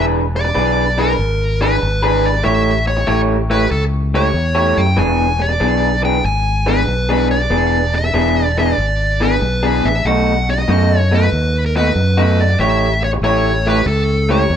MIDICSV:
0, 0, Header, 1, 5, 480
1, 0, Start_track
1, 0, Tempo, 633580
1, 1854, Time_signature, 4, 2, 24, 8
1, 11034, End_track
2, 0, Start_track
2, 0, Title_t, "Lead electric guitar"
2, 0, Program_c, 0, 29
2, 273, Note_on_c, 0, 74, 79
2, 748, Note_on_c, 0, 70, 79
2, 760, Note_off_c, 0, 74, 0
2, 1224, Note_off_c, 0, 70, 0
2, 1227, Note_on_c, 0, 71, 77
2, 1709, Note_on_c, 0, 74, 80
2, 1717, Note_off_c, 0, 71, 0
2, 1848, Note_off_c, 0, 74, 0
2, 1854, Note_on_c, 0, 76, 79
2, 2156, Note_off_c, 0, 76, 0
2, 2176, Note_on_c, 0, 73, 79
2, 2323, Note_off_c, 0, 73, 0
2, 2332, Note_on_c, 0, 73, 87
2, 2420, Note_off_c, 0, 73, 0
2, 2658, Note_on_c, 0, 71, 69
2, 2811, Note_off_c, 0, 71, 0
2, 2814, Note_on_c, 0, 69, 79
2, 2901, Note_off_c, 0, 69, 0
2, 3146, Note_on_c, 0, 73, 86
2, 3619, Note_on_c, 0, 79, 92
2, 3636, Note_off_c, 0, 73, 0
2, 3775, Note_off_c, 0, 79, 0
2, 3778, Note_on_c, 0, 80, 85
2, 4104, Note_on_c, 0, 74, 88
2, 4110, Note_off_c, 0, 80, 0
2, 4550, Note_off_c, 0, 74, 0
2, 4582, Note_on_c, 0, 79, 85
2, 4735, Note_off_c, 0, 79, 0
2, 4738, Note_on_c, 0, 80, 90
2, 5061, Note_on_c, 0, 71, 85
2, 5070, Note_off_c, 0, 80, 0
2, 5509, Note_off_c, 0, 71, 0
2, 5538, Note_on_c, 0, 74, 100
2, 6024, Note_off_c, 0, 74, 0
2, 6027, Note_on_c, 0, 76, 86
2, 6398, Note_off_c, 0, 76, 0
2, 6398, Note_on_c, 0, 74, 86
2, 6504, Note_off_c, 0, 74, 0
2, 6507, Note_on_c, 0, 74, 87
2, 6987, Note_on_c, 0, 71, 86
2, 6997, Note_off_c, 0, 74, 0
2, 7465, Note_on_c, 0, 76, 88
2, 7478, Note_off_c, 0, 71, 0
2, 7618, Note_on_c, 0, 78, 89
2, 7622, Note_off_c, 0, 76, 0
2, 7951, Note_off_c, 0, 78, 0
2, 7952, Note_on_c, 0, 75, 86
2, 8324, Note_off_c, 0, 75, 0
2, 8324, Note_on_c, 0, 73, 86
2, 8441, Note_off_c, 0, 73, 0
2, 8446, Note_on_c, 0, 71, 86
2, 8830, Note_off_c, 0, 71, 0
2, 8833, Note_on_c, 0, 70, 66
2, 8903, Note_off_c, 0, 70, 0
2, 8912, Note_on_c, 0, 71, 94
2, 9398, Note_on_c, 0, 74, 97
2, 9402, Note_off_c, 0, 71, 0
2, 9542, Note_off_c, 0, 74, 0
2, 9545, Note_on_c, 0, 76, 90
2, 9876, Note_off_c, 0, 76, 0
2, 9880, Note_on_c, 0, 73, 83
2, 9920, Note_off_c, 0, 73, 0
2, 10030, Note_on_c, 0, 73, 91
2, 10359, Note_off_c, 0, 73, 0
2, 10364, Note_on_c, 0, 71, 84
2, 10500, Note_off_c, 0, 71, 0
2, 10511, Note_on_c, 0, 69, 91
2, 10841, Note_off_c, 0, 69, 0
2, 10841, Note_on_c, 0, 73, 90
2, 11034, Note_off_c, 0, 73, 0
2, 11034, End_track
3, 0, Start_track
3, 0, Title_t, "Clean electric guitar"
3, 0, Program_c, 1, 27
3, 0, Note_on_c, 1, 52, 74
3, 0, Note_on_c, 1, 62, 75
3, 0, Note_on_c, 1, 68, 88
3, 0, Note_on_c, 1, 71, 88
3, 153, Note_off_c, 1, 52, 0
3, 155, Note_off_c, 1, 62, 0
3, 156, Note_off_c, 1, 68, 0
3, 158, Note_off_c, 1, 71, 0
3, 412, Note_on_c, 1, 52, 77
3, 413, Note_on_c, 1, 62, 81
3, 417, Note_on_c, 1, 68, 84
3, 418, Note_on_c, 1, 71, 97
3, 625, Note_off_c, 1, 52, 0
3, 626, Note_off_c, 1, 62, 0
3, 627, Note_off_c, 1, 68, 0
3, 628, Note_off_c, 1, 71, 0
3, 739, Note_on_c, 1, 52, 85
3, 742, Note_on_c, 1, 62, 84
3, 745, Note_on_c, 1, 68, 89
3, 747, Note_on_c, 1, 71, 92
3, 841, Note_off_c, 1, 52, 0
3, 842, Note_off_c, 1, 62, 0
3, 844, Note_off_c, 1, 68, 0
3, 844, Note_off_c, 1, 71, 0
3, 1219, Note_on_c, 1, 52, 76
3, 1222, Note_on_c, 1, 62, 80
3, 1227, Note_on_c, 1, 68, 83
3, 1231, Note_on_c, 1, 71, 90
3, 1320, Note_off_c, 1, 52, 0
3, 1322, Note_off_c, 1, 62, 0
3, 1324, Note_off_c, 1, 68, 0
3, 1326, Note_off_c, 1, 71, 0
3, 1534, Note_on_c, 1, 71, 83
3, 1538, Note_on_c, 1, 68, 85
3, 1542, Note_on_c, 1, 62, 74
3, 1547, Note_on_c, 1, 52, 72
3, 1721, Note_off_c, 1, 71, 0
3, 1723, Note_off_c, 1, 68, 0
3, 1725, Note_off_c, 1, 62, 0
3, 1727, Note_off_c, 1, 52, 0
3, 1844, Note_on_c, 1, 57, 82
3, 1844, Note_on_c, 1, 64, 82
3, 1850, Note_on_c, 1, 67, 78
3, 1852, Note_on_c, 1, 73, 88
3, 2060, Note_off_c, 1, 57, 0
3, 2060, Note_off_c, 1, 64, 0
3, 2062, Note_off_c, 1, 67, 0
3, 2064, Note_off_c, 1, 73, 0
3, 2326, Note_on_c, 1, 57, 80
3, 2328, Note_on_c, 1, 64, 93
3, 2332, Note_on_c, 1, 67, 93
3, 2335, Note_on_c, 1, 73, 86
3, 2541, Note_off_c, 1, 57, 0
3, 2541, Note_off_c, 1, 64, 0
3, 2543, Note_off_c, 1, 67, 0
3, 2545, Note_off_c, 1, 73, 0
3, 2650, Note_on_c, 1, 57, 84
3, 2656, Note_on_c, 1, 64, 85
3, 2658, Note_on_c, 1, 67, 91
3, 2659, Note_on_c, 1, 73, 86
3, 2755, Note_off_c, 1, 57, 0
3, 2758, Note_off_c, 1, 64, 0
3, 2758, Note_off_c, 1, 67, 0
3, 2759, Note_off_c, 1, 73, 0
3, 3138, Note_on_c, 1, 57, 79
3, 3141, Note_on_c, 1, 64, 87
3, 3141, Note_on_c, 1, 67, 87
3, 3145, Note_on_c, 1, 73, 89
3, 3239, Note_off_c, 1, 57, 0
3, 3240, Note_off_c, 1, 64, 0
3, 3240, Note_off_c, 1, 67, 0
3, 3242, Note_off_c, 1, 73, 0
3, 3445, Note_on_c, 1, 73, 97
3, 3447, Note_on_c, 1, 67, 83
3, 3453, Note_on_c, 1, 64, 82
3, 3456, Note_on_c, 1, 57, 75
3, 3635, Note_off_c, 1, 73, 0
3, 3636, Note_off_c, 1, 67, 0
3, 3640, Note_off_c, 1, 64, 0
3, 3641, Note_off_c, 1, 57, 0
3, 3761, Note_on_c, 1, 52, 83
3, 3764, Note_on_c, 1, 59, 76
3, 3769, Note_on_c, 1, 62, 82
3, 3772, Note_on_c, 1, 68, 87
3, 3978, Note_off_c, 1, 52, 0
3, 3979, Note_off_c, 1, 59, 0
3, 3982, Note_off_c, 1, 62, 0
3, 3983, Note_off_c, 1, 68, 0
3, 4242, Note_on_c, 1, 52, 80
3, 4244, Note_on_c, 1, 59, 84
3, 4246, Note_on_c, 1, 62, 90
3, 4250, Note_on_c, 1, 68, 92
3, 4458, Note_off_c, 1, 52, 0
3, 4459, Note_off_c, 1, 59, 0
3, 4460, Note_off_c, 1, 62, 0
3, 4462, Note_off_c, 1, 68, 0
3, 4561, Note_on_c, 1, 52, 83
3, 4565, Note_on_c, 1, 59, 87
3, 4567, Note_on_c, 1, 62, 85
3, 4571, Note_on_c, 1, 68, 85
3, 4670, Note_off_c, 1, 52, 0
3, 4672, Note_off_c, 1, 59, 0
3, 4673, Note_off_c, 1, 62, 0
3, 4675, Note_off_c, 1, 68, 0
3, 5047, Note_on_c, 1, 52, 71
3, 5049, Note_on_c, 1, 59, 91
3, 5051, Note_on_c, 1, 62, 87
3, 5055, Note_on_c, 1, 68, 91
3, 5153, Note_off_c, 1, 52, 0
3, 5154, Note_off_c, 1, 59, 0
3, 5155, Note_off_c, 1, 62, 0
3, 5157, Note_off_c, 1, 68, 0
3, 5371, Note_on_c, 1, 68, 83
3, 5376, Note_on_c, 1, 62, 92
3, 5380, Note_on_c, 1, 59, 81
3, 5381, Note_on_c, 1, 52, 72
3, 5559, Note_off_c, 1, 68, 0
3, 5561, Note_off_c, 1, 62, 0
3, 5563, Note_off_c, 1, 59, 0
3, 5564, Note_off_c, 1, 52, 0
3, 5683, Note_on_c, 1, 52, 74
3, 5683, Note_on_c, 1, 59, 77
3, 5687, Note_on_c, 1, 62, 84
3, 5688, Note_on_c, 1, 68, 91
3, 5899, Note_off_c, 1, 52, 0
3, 5899, Note_off_c, 1, 59, 0
3, 5901, Note_off_c, 1, 62, 0
3, 5901, Note_off_c, 1, 68, 0
3, 6165, Note_on_c, 1, 52, 82
3, 6166, Note_on_c, 1, 59, 85
3, 6172, Note_on_c, 1, 62, 96
3, 6173, Note_on_c, 1, 68, 97
3, 6380, Note_off_c, 1, 52, 0
3, 6381, Note_off_c, 1, 59, 0
3, 6384, Note_off_c, 1, 62, 0
3, 6384, Note_off_c, 1, 68, 0
3, 6496, Note_on_c, 1, 52, 81
3, 6500, Note_on_c, 1, 62, 94
3, 6501, Note_on_c, 1, 59, 88
3, 6504, Note_on_c, 1, 68, 97
3, 6598, Note_off_c, 1, 52, 0
3, 6600, Note_off_c, 1, 62, 0
3, 6601, Note_off_c, 1, 59, 0
3, 6602, Note_off_c, 1, 68, 0
3, 6972, Note_on_c, 1, 52, 78
3, 6976, Note_on_c, 1, 59, 80
3, 6979, Note_on_c, 1, 62, 80
3, 6982, Note_on_c, 1, 68, 84
3, 7077, Note_off_c, 1, 52, 0
3, 7078, Note_off_c, 1, 59, 0
3, 7080, Note_off_c, 1, 62, 0
3, 7081, Note_off_c, 1, 68, 0
3, 7294, Note_on_c, 1, 68, 87
3, 7297, Note_on_c, 1, 62, 76
3, 7299, Note_on_c, 1, 59, 77
3, 7300, Note_on_c, 1, 52, 67
3, 7481, Note_off_c, 1, 68, 0
3, 7483, Note_off_c, 1, 62, 0
3, 7484, Note_off_c, 1, 52, 0
3, 7484, Note_off_c, 1, 59, 0
3, 7618, Note_on_c, 1, 47, 70
3, 7624, Note_on_c, 1, 57, 77
3, 7626, Note_on_c, 1, 63, 76
3, 7627, Note_on_c, 1, 66, 88
3, 7828, Note_off_c, 1, 47, 0
3, 7831, Note_off_c, 1, 57, 0
3, 7831, Note_off_c, 1, 63, 0
3, 7832, Note_off_c, 1, 66, 0
3, 8090, Note_on_c, 1, 47, 85
3, 8093, Note_on_c, 1, 57, 86
3, 8097, Note_on_c, 1, 63, 92
3, 8100, Note_on_c, 1, 66, 92
3, 8304, Note_off_c, 1, 47, 0
3, 8306, Note_off_c, 1, 57, 0
3, 8308, Note_off_c, 1, 63, 0
3, 8309, Note_off_c, 1, 66, 0
3, 8419, Note_on_c, 1, 47, 87
3, 8424, Note_on_c, 1, 57, 86
3, 8426, Note_on_c, 1, 63, 80
3, 8428, Note_on_c, 1, 66, 85
3, 8521, Note_off_c, 1, 47, 0
3, 8523, Note_off_c, 1, 57, 0
3, 8524, Note_off_c, 1, 63, 0
3, 8525, Note_off_c, 1, 66, 0
3, 8905, Note_on_c, 1, 47, 87
3, 8906, Note_on_c, 1, 57, 82
3, 8913, Note_on_c, 1, 63, 80
3, 8914, Note_on_c, 1, 66, 93
3, 9004, Note_off_c, 1, 47, 0
3, 9005, Note_off_c, 1, 57, 0
3, 9008, Note_off_c, 1, 63, 0
3, 9009, Note_off_c, 1, 66, 0
3, 9223, Note_on_c, 1, 66, 92
3, 9226, Note_on_c, 1, 63, 84
3, 9227, Note_on_c, 1, 57, 80
3, 9233, Note_on_c, 1, 47, 77
3, 9407, Note_off_c, 1, 66, 0
3, 9409, Note_off_c, 1, 63, 0
3, 9410, Note_off_c, 1, 57, 0
3, 9412, Note_off_c, 1, 47, 0
3, 9545, Note_on_c, 1, 57, 69
3, 9547, Note_on_c, 1, 64, 80
3, 9551, Note_on_c, 1, 67, 86
3, 9553, Note_on_c, 1, 73, 91
3, 9753, Note_off_c, 1, 57, 0
3, 9754, Note_off_c, 1, 64, 0
3, 9756, Note_off_c, 1, 67, 0
3, 9757, Note_off_c, 1, 73, 0
3, 10025, Note_on_c, 1, 57, 84
3, 10032, Note_on_c, 1, 64, 93
3, 10032, Note_on_c, 1, 67, 84
3, 10036, Note_on_c, 1, 73, 91
3, 10234, Note_off_c, 1, 57, 0
3, 10237, Note_off_c, 1, 64, 0
3, 10237, Note_off_c, 1, 67, 0
3, 10239, Note_off_c, 1, 73, 0
3, 10351, Note_on_c, 1, 57, 80
3, 10357, Note_on_c, 1, 64, 93
3, 10358, Note_on_c, 1, 67, 81
3, 10361, Note_on_c, 1, 73, 90
3, 10449, Note_off_c, 1, 57, 0
3, 10452, Note_off_c, 1, 64, 0
3, 10452, Note_off_c, 1, 67, 0
3, 10454, Note_off_c, 1, 73, 0
3, 10825, Note_on_c, 1, 57, 78
3, 10833, Note_on_c, 1, 64, 89
3, 10835, Note_on_c, 1, 67, 92
3, 10836, Note_on_c, 1, 73, 91
3, 10926, Note_off_c, 1, 57, 0
3, 10930, Note_off_c, 1, 64, 0
3, 10932, Note_off_c, 1, 67, 0
3, 10932, Note_off_c, 1, 73, 0
3, 11034, End_track
4, 0, Start_track
4, 0, Title_t, "Fingered electric bass"
4, 0, Program_c, 2, 33
4, 0, Note_on_c, 2, 28, 91
4, 392, Note_off_c, 2, 28, 0
4, 427, Note_on_c, 2, 35, 78
4, 870, Note_off_c, 2, 35, 0
4, 903, Note_on_c, 2, 32, 88
4, 1348, Note_off_c, 2, 32, 0
4, 1385, Note_on_c, 2, 32, 82
4, 1829, Note_off_c, 2, 32, 0
4, 1863, Note_on_c, 2, 33, 90
4, 2308, Note_off_c, 2, 33, 0
4, 2336, Note_on_c, 2, 33, 83
4, 2784, Note_off_c, 2, 33, 0
4, 2812, Note_on_c, 2, 37, 86
4, 3262, Note_off_c, 2, 37, 0
4, 3288, Note_on_c, 2, 40, 86
4, 3590, Note_off_c, 2, 40, 0
4, 3618, Note_on_c, 2, 42, 84
4, 3761, Note_off_c, 2, 42, 0
4, 3772, Note_on_c, 2, 28, 93
4, 4222, Note_off_c, 2, 28, 0
4, 4250, Note_on_c, 2, 35, 87
4, 4701, Note_off_c, 2, 35, 0
4, 4732, Note_on_c, 2, 32, 87
4, 5182, Note_off_c, 2, 32, 0
4, 5207, Note_on_c, 2, 35, 81
4, 5660, Note_off_c, 2, 35, 0
4, 5685, Note_on_c, 2, 28, 85
4, 6139, Note_off_c, 2, 28, 0
4, 6168, Note_on_c, 2, 28, 84
4, 6621, Note_off_c, 2, 28, 0
4, 6651, Note_on_c, 2, 32, 85
4, 7102, Note_off_c, 2, 32, 0
4, 7135, Note_on_c, 2, 35, 88
4, 7435, Note_off_c, 2, 35, 0
4, 7463, Note_on_c, 2, 33, 89
4, 7605, Note_off_c, 2, 33, 0
4, 7613, Note_on_c, 2, 35, 88
4, 8064, Note_off_c, 2, 35, 0
4, 8095, Note_on_c, 2, 42, 87
4, 8545, Note_off_c, 2, 42, 0
4, 8580, Note_on_c, 2, 39, 86
4, 9028, Note_off_c, 2, 39, 0
4, 9057, Note_on_c, 2, 42, 86
4, 9508, Note_off_c, 2, 42, 0
4, 9540, Note_on_c, 2, 33, 86
4, 9989, Note_off_c, 2, 33, 0
4, 10013, Note_on_c, 2, 33, 84
4, 10467, Note_off_c, 2, 33, 0
4, 10500, Note_on_c, 2, 37, 90
4, 10951, Note_off_c, 2, 37, 0
4, 10985, Note_on_c, 2, 40, 92
4, 11034, Note_off_c, 2, 40, 0
4, 11034, End_track
5, 0, Start_track
5, 0, Title_t, "Muted clean electric guitar strokes"
5, 269, Note_on_c, 9, 29, 46
5, 336, Note_off_c, 9, 29, 0
5, 336, Note_on_c, 9, 29, 50
5, 412, Note_off_c, 9, 29, 0
5, 1378, Note_on_c, 9, 29, 48
5, 1454, Note_off_c, 9, 29, 0
5, 1773, Note_on_c, 9, 29, 45
5, 1849, Note_off_c, 9, 29, 0
5, 2174, Note_on_c, 9, 29, 45
5, 2247, Note_off_c, 9, 29, 0
5, 2247, Note_on_c, 9, 29, 45
5, 2323, Note_off_c, 9, 29, 0
5, 3288, Note_on_c, 9, 29, 44
5, 3364, Note_off_c, 9, 29, 0
5, 3685, Note_on_c, 9, 29, 47
5, 3760, Note_off_c, 9, 29, 0
5, 4084, Note_on_c, 9, 29, 48
5, 4158, Note_off_c, 9, 29, 0
5, 4158, Note_on_c, 9, 29, 48
5, 4234, Note_off_c, 9, 29, 0
5, 5214, Note_on_c, 9, 29, 41
5, 5290, Note_off_c, 9, 29, 0
5, 5607, Note_on_c, 9, 29, 49
5, 5683, Note_off_c, 9, 29, 0
5, 6013, Note_on_c, 9, 29, 47
5, 6089, Note_off_c, 9, 29, 0
5, 6089, Note_on_c, 9, 29, 50
5, 6165, Note_off_c, 9, 29, 0
5, 7130, Note_on_c, 9, 29, 49
5, 7206, Note_off_c, 9, 29, 0
5, 7543, Note_on_c, 9, 29, 45
5, 7618, Note_off_c, 9, 29, 0
5, 7948, Note_on_c, 9, 29, 45
5, 8016, Note_off_c, 9, 29, 0
5, 8016, Note_on_c, 9, 29, 44
5, 8092, Note_off_c, 9, 29, 0
5, 9059, Note_on_c, 9, 29, 45
5, 9135, Note_off_c, 9, 29, 0
5, 9468, Note_on_c, 9, 29, 43
5, 9544, Note_off_c, 9, 29, 0
5, 9866, Note_on_c, 9, 29, 41
5, 9942, Note_off_c, 9, 29, 0
5, 9948, Note_on_c, 9, 29, 52
5, 10023, Note_off_c, 9, 29, 0
5, 10988, Note_on_c, 9, 29, 45
5, 11034, Note_off_c, 9, 29, 0
5, 11034, End_track
0, 0, End_of_file